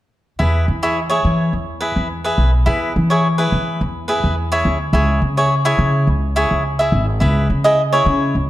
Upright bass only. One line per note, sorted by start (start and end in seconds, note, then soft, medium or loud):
0.40 0.66 E2 medium
0.68 1.21 E3 medium
1.25 1.51 E3 medium
1.53 1.93 E2 medium
1.96 2.35 E2 medium
2.38 2.64 B1 medium
2.67 2.93 E2 medium
2.96 3.48 E3 medium
3.52 3.79 E3 medium
3.81 4.21 E2 medium
4.24 4.63 E2 medium
4.65 4.92 D2 medium
4.93 5.20 C#2 medium
5.22 5.75 C#3 medium
5.79 6.05 C#3 medium
6.07 6.48 C#2 medium
6.51 6.90 C#2 medium
6.92 7.19 G#1 medium
7.21 7.48 C#2 medium
7.50 8.03 C#3 medium
8.06 8.33 C#3 medium
8.35 8.50 C#2 medium